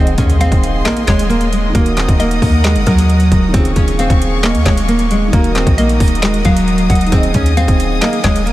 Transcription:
Already playing: 808-style bass D#1, grand piano D#3 D#4 G#4, nylon-string guitar C4, string section G#4 D#5 C6, impact
0.01 grand piano D#5
0.07 closed hi-hat
0.18 808-style bass D#2, nylon-string guitar C#4, kick, closed hi-hat
0.30 closed hi-hat
0.40 nylon-string guitar C4, synth pluck F5, closed hi-hat
0.52 808-style bass D#1, kick, closed hi-hat
0.63 closed hi-hat
0.85 nylon-string guitar A#3, synth pluck D#5, snare, clap, closed hi-hat
0.97 closed hi-hat
1.07 808-style bass D#1, nylon-string guitar G#3, synth pluck C#5, kick, snare, clap, closed hi-hat
1.19 closed hi-hat
1.29 nylon-string guitar A#3, closed hi-hat
1.41 closed hi-hat
1.53 nylon-string guitar G#3, closed hi-hat
1.69 grand piano D#3 D#4
1.75 808-style bass D#1, nylon-string guitar A#3, grand piano F#4, string section A#4 F#5 D#6, kick, closed hi-hat
1.80 grand piano A#4
1.86 closed hi-hat
1.97 nylon-string guitar C4, snare, clap, closed hi-hat
2.08 808-style bass D#1, kick, closed hi-hat
2.20 nylon-string guitar A#3, synth pluck D#5, closed hi-hat
2.31 closed hi-hat
2.42 808-style bass D#2, kick, open hi-hat
2.64 nylon-string guitar G#3, snare, clap, closed hi-hat
2.76 808-style bass F#1, closed hi-hat
2.87 808-style bass D#2, nylon-string guitar F#3, synth pluck A#4, kick, closed hi-hat
2.98 closed hi-hat
3.10 closed hi-hat
3.20 closed hi-hat
3.32 808-style bass D#1, kick, closed hi-hat
3.48 grand piano C#3 D#3
3.54 808-style bass D#1, nylon-string guitar C4, grand piano F4, string section G#4 F5 C#6, kick, closed hi-hat
3.59 grand piano G#4
3.65 closed hi-hat
3.76 808-style bass D#1, nylon-string guitar C#4, kick, closed hi-hat
3.88 closed hi-hat
3.99 nylon-string guitar C4, synth pluck F5, closed hi-hat
4.10 808-style bass D#1, kick, closed hi-hat
4.22 closed hi-hat
4.43 nylon-string guitar A#3, synth pluck D#5, snare, clap, closed hi-hat
4.55 808-style bass D#2, closed hi-hat
4.66 808-style bass D#1, nylon-string guitar G#3, synth pluck C#5, kick, snare, clap, closed hi-hat
4.77 closed hi-hat
4.88 nylon-string guitar A#3, closed hi-hat
4.99 closed hi-hat
5.11 nylon-string guitar G#3, closed hi-hat
5.28 grand piano D#3 D#4
5.33 808-style bass D#1, nylon-string guitar A#3, string section F#4 A#4 D#5 D#6, grand piano F#4, kick, closed hi-hat
5.39 grand piano A#4
5.44 closed hi-hat
5.55 nylon-string guitar C4, snare, clap, closed hi-hat
5.67 808-style bass A#1, kick, closed hi-hat
5.78 nylon-string guitar A#3, synth pluck D#5, closed hi-hat
5.89 closed hi-hat
6.00 808-style bass D#1, kick, closed hi-hat, open hi-hat
6.08 closed hi-hat
6.15 closed hi-hat
6.22 nylon-string guitar G#3, snare, clap, closed hi-hat
6.34 closed hi-hat
6.45 808-style bass D#1, nylon-string guitar F#3, synth pluck F5, kick, closed hi-hat
6.57 closed hi-hat
6.68 closed hi-hat
6.78 closed hi-hat
6.90 808-style bass D#1, synth pluck F#5, kick, closed hi-hat
6.95 closed hi-hat
7.01 closed hi-hat
7.07 grand piano D#3 D#4, closed hi-hat
7.12 808-style bass D#1, nylon-string guitar C4, string section G#4 G#5, grand piano G#4, kick, closed hi-hat
7.18 grand piano D#5
7.23 closed hi-hat
7.34 808-style bass D#2, nylon-string guitar C#4, kick, closed hi-hat
7.46 closed hi-hat
7.57 nylon-string guitar C4, synth pluck F5, closed hi-hat
7.68 808-style bass D#1, kick, closed hi-hat
7.80 closed hi-hat
8.02 nylon-string guitar A#3, synth pluck D#5, snare, clap, closed hi-hat
8.13 closed hi-hat
8.24 808-style bass D#1, nylon-string guitar G#3, synth pluck C#5, kick, snare, clap, closed hi-hat
8.36 closed hi-hat
8.46 nylon-string guitar A#3, closed hi-hat

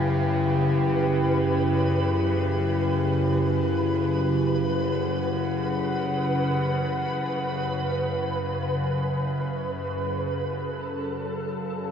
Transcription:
Already playing: analog synth pad F#2 E4 G4 B4 G5, synth drone F#2 C#3, synth texture B4
4.59 analog synth pad F#5
10.44 synth drone F#2 C#3, synth texture A4

